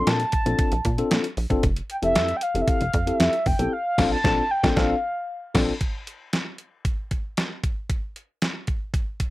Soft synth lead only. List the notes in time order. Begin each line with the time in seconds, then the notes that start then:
0.08 A5
1.91 G5
2.04 E5
2.36 G5
2.43 F5
2.62 E5
2.68 F5
3.07 E5
3.47 G5
3.73 F5
4.12 A5
4.51 G5
4.77 F5